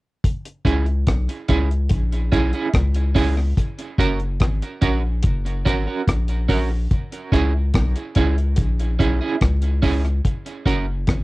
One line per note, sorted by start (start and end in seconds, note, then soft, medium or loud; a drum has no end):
0.24 kick loud
0.24 closed hi-hat medium
0.45 closed hi-hat medium
0.65 1.05 C#2 medium
0.65 0.84 C#4 medium
0.65 0.85 E4 medium
0.65 0.85 G#4 medium
0.65 kick medium
0.65 closed hi-hat medium
0.86 closed hi-hat soft
1.07 1.28 B1 loud
1.07 kick loud
1.07 cross-stick loud
1.07 closed hi-hat medium
1.29 closed hi-hat medium
1.48 1.89 C#2 loud
1.48 1.68 C#4 medium
1.48 1.68 E4 medium
1.48 1.68 G#4 medium
1.48 kick loud
1.48 closed hi-hat medium
1.71 closed hi-hat soft
1.89 2.31 A#1 medium
1.89 kick loud
1.89 closed hi-hat medium
2.12 closed hi-hat medium
2.32 2.53 B1 medium
2.32 2.51 C#4 medium
2.32 2.51 E4 medium
2.32 2.52 G#4 medium
2.32 kick medium
2.32 closed hi-hat medium
2.53 2.68 C#4 soft
2.53 2.68 E4 medium
2.53 2.68 G#4 medium
2.53 closed hi-hat soft
2.74 3.54 C#2 loud
2.74 kick loud
2.74 cross-stick loud
2.74 closed hi-hat medium
2.95 closed hi-hat medium
3.15 3.34 C#4 medium
3.15 3.35 E4 medium
3.15 3.35 G#4 medium
3.15 kick medium
3.15 open hi-hat medium
3.37 muted clean electric guitar stroke soft
3.57 kick loud
3.57 closed hi-hat medium
3.79 closed hi-hat medium
3.98 4.39 F#1 loud
3.98 4.18 C#4 medium
3.98 4.18 F#4 medium
3.98 4.19 A#4 medium
3.98 kick medium
3.98 closed hi-hat medium
4.20 closed hi-hat soft
4.40 4.62 G#1 loud
4.40 kick loud
4.40 cross-stick loud
4.40 closed hi-hat medium
4.62 closed hi-hat medium
4.82 5.22 A#1 medium
4.82 5.01 C#4 medium
4.82 5.02 F#4 medium
4.82 5.02 A#4 medium
4.82 kick loud
4.82 closed hi-hat medium
5.23 5.64 F#1 medium
5.23 kick loud
5.23 closed hi-hat medium
5.46 closed hi-hat medium
5.65 5.87 G#1 medium
5.65 5.85 C#4 medium
5.65 5.85 F#4 medium
5.65 5.85 A#4 medium
5.65 kick medium
5.65 cross-stick medium
5.65 closed hi-hat medium
5.87 6.02 C#4 soft
5.87 6.01 F#4 soft
5.87 6.01 A#4 medium
6.08 6.87 A#1 medium
6.08 kick loud
6.08 cross-stick loud
6.08 closed hi-hat medium
6.28 closed hi-hat medium
6.49 6.68 C#4 medium
6.49 6.68 F#4 medium
6.49 6.69 A#4 medium
6.49 kick medium
6.49 open hi-hat medium
6.71 muted clean electric guitar stroke soft
6.91 kick loud
6.91 closed hi-hat medium
7.12 closed hi-hat medium
7.32 7.72 C#2 medium
7.32 7.52 C#4 medium
7.32 7.52 E4 medium
7.32 7.52 G#4 loud
7.32 kick medium
7.32 closed hi-hat medium
7.74 7.95 B1 loud
7.74 kick loud
7.74 cross-stick loud
7.74 closed hi-hat medium
7.96 closed hi-hat soft
8.15 8.56 C#2 loud
8.15 8.35 C#4 medium
8.15 8.36 E4 medium
8.15 8.36 G#4 medium
8.15 kick medium
8.15 closed hi-hat medium
8.38 closed hi-hat soft
8.56 8.98 A#1 medium
8.56 kick loud
8.56 closed hi-hat medium
8.80 closed hi-hat medium
8.99 9.21 B1 medium
8.99 9.18 C#4 medium
8.99 9.19 E4 medium
8.99 9.19 G#4 medium
8.99 kick loud
8.99 closed hi-hat medium
9.21 9.35 C#4 soft
9.21 9.35 E4 medium
9.21 9.35 G#4 medium
9.41 10.21 C#2 medium
9.41 kick loud
9.41 cross-stick loud
9.41 closed hi-hat medium
9.62 closed hi-hat medium
9.82 10.02 C#4 medium
9.82 10.02 E4 medium
9.82 10.02 G#4 medium
9.82 kick medium
9.82 open hi-hat medium
10.05 muted clean electric guitar stroke medium
10.05 closed hi-hat soft
10.25 kick loud
10.25 closed hi-hat medium
10.46 closed hi-hat medium
10.66 11.06 F#1 loud
10.66 10.85 C#4 medium
10.66 10.85 F#4 medium
10.66 10.86 A#4 medium
10.66 kick medium
10.66 closed hi-hat medium
11.07 11.24 G#1 medium
11.07 kick loud
11.07 cross-stick loud
11.07 closed hi-hat medium